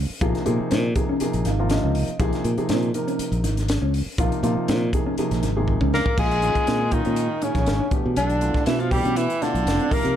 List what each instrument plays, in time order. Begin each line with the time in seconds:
0.10 muted fingered electric bass stroke
0.21 fingered electric bass A#1, grand piano C3 F3 A#3 D#4 G#4, clean electric guitar F4, kick, closed hi-hat
0.35 snare, closed hi-hat
0.45 fingered electric bass A#2, grand piano C3 F3 A#3 D#4 G#4, closed hi-hat
0.60 muted fingered electric bass stroke
0.71 fingered electric bass A#2, clean electric guitar C4, snare, closed hi-hat
0.95 grand piano C3 F3 A#3 D#4 G#4, kick, closed hi-hat
1.09 clean electric guitar C#4
1.20 grand piano C3 F3 A#3 D#4 G#4, muted fingered electric bass stroke, closed hi-hat
1.33 fingered electric bass A#1, closed hi-hat
1.45 fingered electric bass G#1, clean electric guitar D#4, grand piano F5, snare, closed hi-hat
1.59 grand piano C3 F3 A#3 D#4 F4
1.70 grand piano D#5, snare, closed hi-hat
1.83 fingered electric bass C#2, clean electric guitar C#4
1.95 open hi-hat
2.08 closed hi-hat
2.19 fingered electric bass A#1, grand piano C3 F3 A#3 D#4 G#4, clean electric guitar F4, kick, closed hi-hat
2.33 snare, closed hi-hat
2.44 fingered electric bass A#2, closed hi-hat
2.58 grand piano C3 F3 A#3 D#4 G#4, muted fingered electric bass stroke, closed hi-hat
2.69 fingered electric bass A#2, clean electric guitar C4, snare, closed hi-hat
2.82 closed hi-hat
2.94 grand piano C3 F3 A#3 D#4 A#4, closed hi-hat
3.07 clean electric guitar C#4, closed hi-hat
3.19 muted fingered electric bass stroke, closed hi-hat
3.32 fingered electric bass A#1, closed hi-hat
3.44 fingered electric bass G#1, clean electric guitar D#4, snare, closed hi-hat
3.57 snare, closed hi-hat
3.68 snare, closed hi-hat
3.82 fingered electric bass C#2, clean electric guitar C#4
3.94 open hi-hat
4.18 fingered electric bass A#1, grand piano C3 F3 A#3 D#4 F4, clean electric guitar F4, kick, closed hi-hat
4.32 closed hi-hat
4.43 fingered electric bass A#2, grand piano C3 F3 A#3 D#4 F4, closed hi-hat
4.57 muted fingered electric bass stroke
4.68 fingered electric bass A#2, clean electric guitar C4, snare, closed hi-hat
4.93 grand piano C3 F3 A#3 D#4 G#4, kick, closed hi-hat
5.07 clean electric guitar C#4
5.18 grand piano C3 F3 A#3 D#4 G#4, muted fingered electric bass stroke, closed hi-hat
5.31 fingered electric bass A#1, snare, closed hi-hat
5.43 fingered electric bass G#1, clean electric guitar D#4, snare, closed hi-hat
5.57 grand piano C3 F3 A#3 D#4 G#4
5.68 kick
5.81 fingered electric bass C#2, clean electric guitar C#4, kick
5.94 tenor saxophone A#3, alto saxophone A#4, snare
6.06 kick
6.18 fingered electric bass A#1, tenor saxophone G#3, clean electric guitar F4, alto saxophone G#4, kick, crash
6.31 closed hi-hat
6.42 grand piano A#2 D#3 G#3 C#4 F4, closed hi-hat
6.55 muted fingered electric bass stroke, kick, closed hi-hat
6.67 fingered electric bass A#2, clean electric guitar C4, snare, closed hi-hat
6.91 grand piano A#2 D#3 G#3 C#4 F4, tenor saxophone D#3, alto saxophone D#4, kick, closed hi-hat
7.05 fingered electric bass A#2, clean electric guitar C#4, closed hi-hat
7.16 closed hi-hat
7.42 grand piano A#2 D#3 G#3 C#4 D#4, tenor saxophone C#3, alto saxophone C#4, clean electric guitar D#4, closed hi-hat
7.55 fingered electric bass A#1, kick, snare, closed hi-hat
7.66 fingered electric bass G#1, snare, closed hi-hat
7.80 clean electric guitar D4
7.91 grand piano B2 E3 A3 D4 G4, muted fingered electric bass stroke, kick, closed hi-hat
8.06 fingered electric bass B2
8.16 fingered electric bass B1, tenor saxophone D3, clean electric guitar D4, alto saxophone D4, closed hi-hat
8.30 closed hi-hat
8.41 grand piano B2 A3 D4 E4 F4, closed hi-hat
8.54 kick, snare
8.66 fingered electric bass B2, tenor saxophone E3, clean electric guitar B3, alto saxophone E4, snare, closed hi-hat
8.80 tenor saxophone F3, alto saxophone F4, closed hi-hat
8.91 grand piano B2 E3 A3 D4 E4, tenor saxophone G3, alto saxophone G4, kick, open hi-hat
9.04 fingered electric bass B2, clean electric guitar C#4, closed hi-hat
9.16 tenor saxophone E3, alto saxophone E4, closed hi-hat
9.30 closed hi-hat
9.42 grand piano B2 A3 D4 E4 F4, tenor saxophone D3, clean electric guitar D4, alto saxophone D4, snare, closed hi-hat
9.54 fingered electric bass B1, closed hi-hat
9.66 fingered electric bass F1, snare, closed hi-hat
9.80 clean electric guitar C4, closed hi-hat
9.91 grand piano C3 F3 A#3 D#4 G4, tenor saxophone A#3, alto saxophone A#4, muted fingered electric bass stroke, kick, open hi-hat
10.05 fingered electric bass C3, closed hi-hat